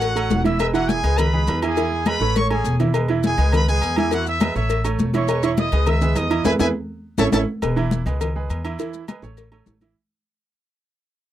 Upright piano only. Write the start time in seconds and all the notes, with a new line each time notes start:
Already playing: A3 A4 C#5
0.16 A3 A4 C#5
0.44 E3 E4 E5
0.59 G#3 G#4 B4
0.73 E3 E4 E5
1.03 G#3 G#4 B4
1.33 G#3 G#4 B4
1.62 E3 E4 E5
1.77 E3 E4 E5
2.07 G#3 G#4 B4
2.21 A3 A4 C#5
2.51 A3 A4 C#5
2.80 E3 E4 E5
2.95 G#3 G#4 B4
3.09 E3 E4 E5
3.38 G#3 G#4 B4
3.68 G#3 G#4 B4
3.97 E3 E4 E5
4.12 E3 E4 E5
4.40 G#3 G#4 B4
4.55 A3 A4 C#5
4.85 A3 A4 C#5
5.14 E3 E4 E5
5.28 G#3 G#4 B4
5.43 E3 E4 E5
5.72 G#3 G#4 B4
6.01 G#3 G#4 B4
6.30 E3 E4 E5
6.44 E4 G#4 B4
6.60 E4 G#4 B4
7.18 C#4 E4 A4
7.33 C#4 E4 A4
7.62 G#3 G#4 B4
7.76 E3 E4 E5
8.06 G#3 G#4 B4
8.36 G#3 G#4 B4
8.64 E3 E4 E5
8.79 E3 E4 E5
9.08 G#3 G#4 B4
9.23 A3 A4 C#5
9.52 A3 A4 C#5
9.82 E3 E4 E5